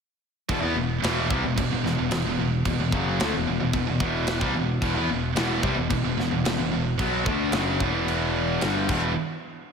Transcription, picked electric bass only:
0.50 0.62 E1 medium
0.63 0.76 E2 medium
0.77 1.02 E1 medium
1.04 1.29 E1 medium
1.30 1.43 C2 loud
1.44 1.57 E1 medium
1.58 1.70 E1 medium
1.72 1.84 E1 medium
1.85 1.98 E1 medium
2.00 2.12 E1 medium
2.12 2.24 E1 medium
2.25 2.38 E1 medium
2.39 2.64 E1 medium
2.66 2.78 E1 medium
2.79 2.92 E1 medium
2.93 3.18 F#1 medium
3.21 3.33 D2 loud
3.34 3.47 E1 medium
3.48 3.60 E1 medium
3.62 3.73 E1 medium
3.74 3.87 E1 medium
3.89 4.00 E1 medium
4.01 4.39 E1 loud
4.41 4.54 C2 loud
4.56 4.81 E1 medium
4.82 4.95 E1 medium
4.97 5.09 E2 loud
5.11 5.35 E1 medium
5.38 5.63 E1 medium
5.64 5.76 C2 loud
5.78 5.90 E1 medium
5.91 6.03 E1 medium
6.05 6.17 E1 medium
6.18 6.31 E1 medium
6.32 6.44 E1 medium
6.47 6.59 E1 medium
6.59 6.72 E1 medium
6.74 6.98 E1 medium
6.99 7.25 B1 loud
7.26 7.52 D2 medium
7.53 7.78 F#1 medium
7.80 8.58 E1 loud
8.63 8.88 G1 medium
8.90 9.15 E1 loud

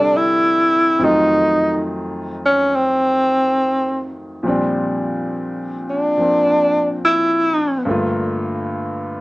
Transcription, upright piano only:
0.00 0.98 D2 soft
0.00 0.99 C3 soft
0.00 0.99 D3 soft
0.00 1.01 F3 soft
0.00 1.00 G3 soft
0.00 1.02 C4 soft
0.00 1.00 D4 soft
0.00 1.03 E4 medium
0.00 1.01 A4 soft
0.99 4.44 F2 soft
0.99 4.44 D#3 soft
0.99 4.45 F#3 soft
1.03 4.46 A3 soft
1.03 4.46 F4 medium
4.43 7.85 A#2 medium
4.43 6.16 F3 soft
4.43 7.86 G3 soft
4.43 6.19 C4 soft
4.48 7.87 D4 medium
6.17 7.86 F3 soft
6.17 7.87 A#3 soft
6.17 7.88 C4 soft
7.85 9.21 G2 medium
7.85 9.21 D3 soft
7.85 9.21 A3 soft
7.85 9.21 A#3 soft
7.90 9.21 F4 medium

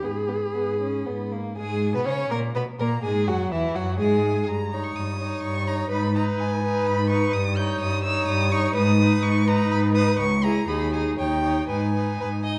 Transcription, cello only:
0.03 0.49 G#2 medium
0.55 1.00 G#2 soft
1.06 1.51 G#2 medium
1.57 1.96 G#2 medium
1.94 2.06 B2 medium
2.06 2.30 C#3 medium
2.30 2.54 A#2 medium
2.55 2.63 B2 medium
2.79 3.02 A#2 medium
3.03 3.29 G#2 medium
3.27 3.50 F#2 medium
3.51 3.74 E2 medium
3.75 4.00 F#2 medium
3.99 4.46 G#2 medium
4.47 4.89 G2 medium
4.95 5.37 G2 medium
5.42 5.84 G2 medium
5.90 6.32 G#2 medium
6.38 6.80 G#2 medium
6.85 7.27 G#2 medium
7.33 7.75 G2 loud
7.80 8.22 G2 medium
8.27 8.69 G2 loud
8.74 9.17 G#2 loud
9.22 9.65 G#2 loud
9.71 10.14 G#2 loud
10.19 10.62 C#2 loud
10.68 11.12 D#2 medium
11.18 11.63 D#2 medium
11.69 12.14 G#2 medium
12.20 12.59 G#2 medium

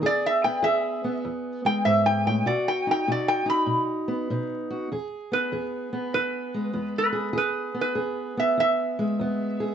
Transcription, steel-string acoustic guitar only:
0.00 0.60 E2 medium
0.00 0.45 B3 medium
0.00 0.61 G#4 medium
0.45 1.04 B3 medium
0.62 1.20 E2 medium
0.62 2.44 G#4 medium
1.04 2.86 B3 medium
1.25 1.82 E2 medium
1.65 2.45 G#3 medium
1.85 2.26 G#2 medium
2.26 2.45 A2 medium
2.46 3.04 B2 medium
2.46 3.07 F#4 medium
2.87 3.45 D#4 medium
3.08 3.65 B2 medium
3.08 4.69 F#4 medium
3.46 4.29 D#4 medium
3.66 4.25 B2 medium
4.08 4.88 B3 medium
4.30 4.87 B2 medium
4.30 4.89 D#4 medium
4.71 4.89 F#4 medium
4.92 5.49 E2 medium
4.92 5.52 G#4 medium
5.32 5.92 B3 medium
5.52 6.09 E2 medium
5.52 7.11 G#4 medium
5.93 6.72 B3 medium
6.14 6.71 E2 medium
6.54 7.34 G#3 medium
6.73 7.32 E2 medium
6.73 7.73 B3 medium
7.12 7.32 G#4 medium
7.33 7.92 E2 medium
7.33 7.94 G#4 medium
7.74 8.36 B3 medium
7.95 8.53 E2 medium
7.95 9.59 G#4 medium
8.37 9.20 B3 medium
8.58 9.15 E2 medium
8.99 9.75 G#3 medium
9.19 9.75 E2 medium
9.19 9.75 B3 medium
9.60 9.75 G#4 medium

